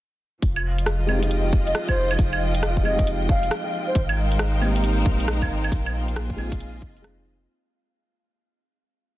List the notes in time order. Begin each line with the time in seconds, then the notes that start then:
0.42 F1 F3 F5, kick, closed hi-hat
0.53 F4, claves
0.78 closed hi-hat
0.84 D#5, cross-stick, closed hi-hat
1.06 G#3 C4 D#4 G5, claves
1.10 G4
1.19 G#3 C4
1.23 D#4, closed hi-hat
1.27 G4
1.31 closed hi-hat
1.53 kick
1.66 D#5, closed hi-hat
1.75 cross-stick, closed hi-hat
1.89 C5, kick, claves
1.96 F1
2.11 claves
2.19 F1, kick, closed hi-hat
2.33 claves
2.55 closed hi-hat
2.63 cross-stick, closed hi-hat
2.77 kick
2.83 G#3 C4 D#4 D#5, claves
2.87 G4
2.95 G#3 C4
2.99 D#4 G4, kick, closed hi-hat
3.07 closed hi-hat
3.29 F5, kick
3.43 closed hi-hat
3.51 cross-stick, closed hi-hat
3.87 C5
3.95 G#1 G#3, kick, closed hi-hat
4.05 D#4
4.09 C5, claves
4.17 A#4
4.32 closed hi-hat
4.39 cross-stick, closed hi-hat
4.59 A#3 C4 D#4, claves
4.64 G4
4.72 A#3 C4
4.76 D#4 G4, closed hi-hat
4.84 closed hi-hat
5.06 A#1, kick
5.20 closed hi-hat
5.28 cross-stick, closed hi-hat
5.42 kick, claves
5.49 G#1
5.64 claves
5.72 A#1 A#3, kick, closed hi-hat
5.86 claves
5.96 F4
6.07 G#4, closed hi-hat
6.16 cross-stick, closed hi-hat
6.30 kick
6.36 G#3 C4 D#4 F4, claves
6.48 G#3 C4
6.52 D#4 F4 D#5, kick, closed hi-hat
6.60 closed hi-hat
6.82 F1, kick
6.97 closed hi-hat
7.02 G#3 C4 D#4, cross-stick, closed hi-hat
7.06 F4